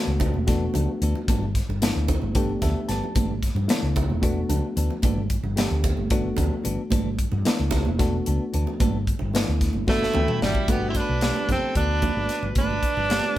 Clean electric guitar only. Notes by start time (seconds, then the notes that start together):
Already playing: B3 D4 A4
0.21 B3 D4 A4
0.48 E3 B3 D4 A4
0.74 B3 D4 A4
1.02 E3 B3 D4 A4
1.29 E3 B3 D4 A4
1.82 E3 B3 D4 A4
2.35 E3 B3 D4 A4
2.62 B3 D4 A4
2.89 E3 B3 D4 A4
3.16 E3 B3 D4 A4
3.70 E3 B3 D4 A4
4.23 E3 B3 D4 A4
4.49 B3 D4 A4
4.76 E3 B3 D4 A4
5.04 E3 B3 D4 A4
5.58 E3 B3 D4 A4
6.11 E3 B3 D4 A4
6.37 B3 D4 A4
6.64 E3 B3 D4 A4
6.92 E3 B3 D4 A4
7.45 E3 B3 D4 A4
7.73 B3 D4 A4
8.00 E3 B3 D4 A4
8.27 B3 D4 A4
8.53 E3 B3 D4 A4
8.81 E3 B3 D4 A4
9.35 E3 B3 D4 A4
9.89 E3 B3 D4 A4
10.16 B3 D4 A4
10.42 E3 B3 D4 A4